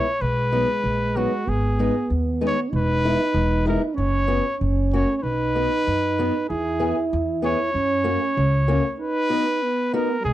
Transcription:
Already playing: C#5
0.19 B1 G#3 B4
0.52 F#3 B3 D#4
0.84 A#1
1.16 F#3 B3 D#4 F#4
1.46 G#1 B3 G#4
1.79 G#3 B3 D#4
2.10 D#2
2.41 G#3 B3 D#4
2.47 C#5
2.70 E1 D#4
2.76 B4
3.05 G#3 B3 E4
3.34 E1
3.66 G#3 B3 E4 A#4
3.94 F#1 C#4 C#5
4.27 B3 C#4 F#4
4.58 F#1 C#4
4.93 A#3 C#4 F#4 C#5
5.17 C#5
5.22 B1 D#4 B4
5.55 B3 D#4 F#4
5.87 F#2
6.19 B3 D#4 F#4
6.49 E2 E4 G#4
6.79 B3 E4 G#4
7.13 E2
7.42 B3 E4 G#4 C#5
7.73 F#2 C#4
8.04 A#3 C#4 F#4
8.37 C#2
8.68 A#3 C#4 F#4
8.98 D#4 B4
9.29 B3 D#4 F#4
9.63 B3
9.93 B3 D#4 F#4 A#4
10.20 G3
10.25 B1 G#3 G#4

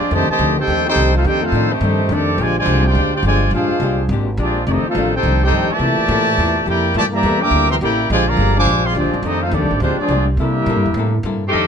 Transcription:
Already playing: C4 F4 G#4 D5
0.11 F2 C3 D#3 A3 D4 G4 C5 D#5 A5
0.29 C3 D#3 A3 G4 C5 D#5 A5, muted upright bass stroke
0.39 D2 F2 D#3 A3 D4
0.58 C4 D#4 G4 A4 C5 G5
0.67 D#2 F2 D#3 A3 D4
0.87 C4 D#4 G4 A4 C5 G5
0.96 C2 F2 D#3 A3 D4
1.16 A3 C4 D#4 F4 A4 C5 F5
1.24 F2 D#3 A3 C4 D4 D#4 G4 A4 C5 G5
1.42 A3 C4 D#4 F4 A4 C5 F5
1.52 F2 A2 D#3 A3 D4
1.71 D#3 A3 C4 D#4 G4 C5
1.81 F2 G2 D#3 A3 D4
2.09 F2 D#3 A3 D4
2.13 C4 G4 A4 D5
2.38 A#1 A#2 D3 F3 G#3 D4 F4 G4
2.42 C5 D5 G#5
2.59 D3 F3 G#3 F4 C5 D5 G#5
2.66 C2 A#2 G#3 D4 G4
2.87 G#3 D4 F4 G4 C5 D5 G5
2.95 D2 A#2 G#3 D4
2.99 G4
3.15 G#3 D4 F4 G4 C5 D5 G5
3.23 G1 A#2 D3 F3 G#3 D4 F4 G4 C5 D5
3.27 G#5
3.51 A#1 A#2 G#3 D4 F4 G#4 C5 F5
3.55 G4
3.69 muted upright bass stroke
3.80 C2 A#2 G#3 D4 G4
4.09 G#1 A#2 G#3 D4
4.13 G4
4.37 A#1 A#2 F3 G#3 D4 G4
4.41 C4 F4 G#4 D5
4.66 F1 F2 D#3 A3 C4 D4 D#4 D5
4.71 C4 G4 A4 D#5
4.84 A3 C4 F4, muted upright bass stroke
4.89 D#4 A4 C5 F5
4.95 A1 F2 D#3 A3 D4
5.15 C4 D#4 G4 A4 C5 G5
5.23 C2 F2 D#3 A3 D4
5.44 C4 D#4 G4 A4 C5 G5
5.50 F2 G2 D#3 A3 D4
5.69 G4 D5 E5 A5, muted upright bass stroke
5.73 A#2 E3 A3
5.79 C3 A#3 E4
5.83 A4
5.98 muted upright bass stroke
6.08 A2 C3 A#3 E4 A4
6.38 E2 C3 A#3 E4 A4
6.66 F2 C3 A#3 E4 G4 A4 A#4 D5 G5
6.94 G2 A#2 C3 E3 A3 A#3 E4 G4 A4 D5 E5 A5
7.11 E3 G3 A#3 D5 E5 A#5
7.16 G4
7.23 E2 C3 A#3 E4 A4
7.42 G3 A#3 D4 A#4 E5 G5 D6
7.51 D2 C3 A#3 E4
7.55 A4
7.69 E3 G3 C4 A#4 E5 G5 C6
7.81 A1 C3 A#3 E4 G4 A4 A#4 D5 G5
8.10 A#1 A#2 D3 F3 G#3 D4 F4 G4 C5 D5 G#5
8.28 D3 F3 A#3 G#4 D5 F5 A#5
8.37 G1 A#2 G#3 D4 G4
8.57 F3 G#3 D4 C5 F5 G#5 D6
8.65 A#1 A#2 G#3 D4
8.69 G4
8.85 F3 G#3 C4 G#4 D5 F5 C6
8.95 D2 A#2 F3 G#3 C4 D4 F4 G4 G#4 D5
9.04 A#1
9.14 G#1
9.23 F2 D#3 A3 C4 D4 D#4 G4 A4 D#5
9.43 A3 C4 D#4 F4 A4 C5 F5
9.51 D#2 F2 D#3 A3 C4 D4 G4 A4 D5
9.62 C2
9.71 A1
9.80 D2 A#2 F3 G#3 C4 D4 F4 G4 C5
9.98 F3 G#3 C4 D4 F4 G#4 D5, muted upright bass stroke
10.08 C2 A#2 G#3 D4 G4
10.37 C3 G3 A#3 D4 E4 G4 A4 A#4 E5
10.66 A#2 C3 A#3 E4 A4
10.76 G2
10.86 E2
10.94 A2 C3 A#3
10.98 E4 A4
11.23 G2 C3 A#3 E4 A4
11.47 D#3 A3 C4 G4
11.52 F2 D#3 A3 D4 A4 D5 D#5 G5

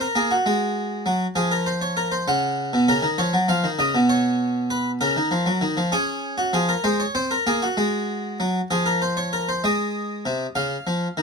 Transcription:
0.01 A#4
0.15 A#3 G#4
0.31 F#4
0.46 G#3
1.06 F#3
1.36 F3 G#4
1.51 A#4
1.66 C5
1.81 C#5
1.97 A#4
2.12 C5
2.28 C#3 F#5
2.73 B2
2.88 C#3 A#4
3.03 D#3
3.18 F3 C#5
3.33 F#3
3.48 F3 F5
3.64 D#3
3.79 C#3 D#5
3.95 B2
4.09 C#5
4.70 B4
5.01 C#3 A#4
5.17 D#3
5.31 F3
5.46 F#3
5.61 D#3
5.77 F3
5.92 C#4 G#4
6.38 F#4
6.53 F3 G#4
6.69 A#4
6.84 G#3 C5
7.00 C#5
7.15 C4 C5
7.31 A#4
7.47 A#3 G#4
7.62 F#4
7.77 G#3
8.40 F#3
8.71 F3 G#4
8.86 A#4
9.02 C5
9.17 C#5
9.33 A#4
9.49 C5
9.64 G#3 D#5
10.26 C3
10.55 C#3 F5
10.87 F3
11.17 D#3

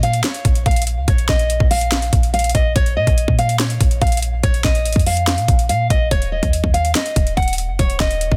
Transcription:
Already playing: A#2
0.03 F5, closed hi-hat
0.13 closed hi-hat
0.24 C#5, snare, closed hi-hat
0.34 closed hi-hat
0.45 A#1, kick, closed hi-hat
0.55 closed hi-hat
0.66 A#1 F5, kick, closed hi-hat
0.71 closed hi-hat
0.76 closed hi-hat
0.82 closed hi-hat
0.87 closed hi-hat
0.97 C#2
1.08 A#1 C#5, kick, closed hi-hat
1.18 closed hi-hat
1.29 A#1 D#5, kick, snare
1.39 closed hi-hat
1.50 closed hi-hat
1.60 A#1, kick
1.71 F5, open hi-hat
1.81 closed hi-hat
1.92 snare, closed hi-hat
2.02 closed hi-hat
2.13 A#1, kick, closed hi-hat
2.23 closed hi-hat
2.34 F5, closed hi-hat
2.39 closed hi-hat
2.44 closed hi-hat
2.49 closed hi-hat
2.55 A#1 D#5, kick, closed hi-hat
2.76 A#1 C#5, kick, closed hi-hat
2.86 closed hi-hat
2.97 A#2 D#5
3.07 A#1, kick, closed hi-hat
3.18 closed hi-hat
3.28 A#2, kick
3.39 F5, closed hi-hat
3.49 closed hi-hat
3.60 C#5, snare, closed hi-hat
3.70 closed hi-hat
3.81 A#1, kick, closed hi-hat
3.91 closed hi-hat
4.01 A#1 F5, kick, closed hi-hat
4.07 closed hi-hat
4.12 closed hi-hat
4.17 closed hi-hat
4.22 closed hi-hat
4.43 A#1 C#5, kick, closed hi-hat
4.54 closed hi-hat
4.64 A#1 D#5, kick, snare
4.75 closed hi-hat
4.86 A1, closed hi-hat
4.92 F2, kick, closed hi-hat
4.99 closed hi-hat
5.06 F5, open hi-hat
5.17 closed hi-hat
5.27 snare, closed hi-hat
5.38 A#2, closed hi-hat
5.48 A#1, kick, closed hi-hat
5.59 closed hi-hat
5.69 A#2 F5, closed hi-hat
5.90 A#1 D#5, kick, closed hi-hat
6.11 D#1 C#5, kick, closed hi-hat
6.22 closed hi-hat
6.32 D#5
6.43 D#2, kick, closed hi-hat
6.53 closed hi-hat
6.64 D#2, kick
6.74 F5, closed hi-hat
6.85 closed hi-hat
6.95 D#5, snare, closed hi-hat
7.06 closed hi-hat
7.16 D#1, kick, closed hi-hat
7.27 closed hi-hat
7.37 D#1 F#5, kick, closed hi-hat
7.42 closed hi-hat
7.48 closed hi-hat
7.53 closed hi-hat
7.58 closed hi-hat
7.69 F#1
7.79 D#1 C#5, kick, closed hi-hat
7.90 closed hi-hat
8.00 D#1 D#5, kick, snare
8.11 closed hi-hat
8.21 closed hi-hat
8.32 D#1, kick

